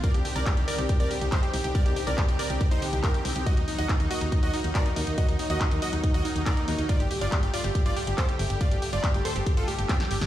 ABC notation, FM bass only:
X:1
M:4/4
L:1/16
Q:1/4=140
K:Cdor
V:1 name="FM bass" clef=bass
z C,, z C,, z C,, z C,, z C,, z C,, z2 C,, C,, | z C,, z C,, z C,, z C,, z C,, z C,, z2 C,, C,, | z E,, z E,, z E,, z E,, z E,, z E,, z2 E,, E,, | z E,, z E,, z E,, z E,, z E,, z E,, z2 E,, E,, |
z G,,, z G,,, z G,,, z G,,, z G,,, z G,,, z2 G,,, G,,, | z G,,, z G,,, z G,,, z G,,, z G,,, z G,,, z2 G,,, G,,, |]